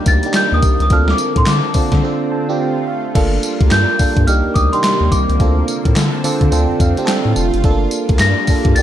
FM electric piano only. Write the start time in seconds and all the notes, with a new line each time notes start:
Already playing: A#3 D4 D#4 G4
0.25 A#3 D4 D#4 G4
0.91 C4 D4 F4 A4
1.75 C4 D4 F4 A4
2.03 C4 D4 F4 A4
2.32 A5
2.49 C4 D4 F4 G4
2.60 G5
2.88 F5
3.15 A#3 D4 F4 A4
4.00 A#3 D4 F4 A4
4.27 A#3 D4 D#4 G4
4.73 A#3 D4 D#4 G4
5.40 C4 D4 F4 A4
6.24 C4 D4 F4 A4 D5
6.52 C4 D4 F4 A4 G5
6.81 F5
6.98 C4 D4 F4 G4
7.05 A4 G5
7.36 A5
7.64 A3 D4 F4 A4
7.71 A#3
8.49 A#3 D4 F4 A4
8.77 A#3 D4 D#4 G4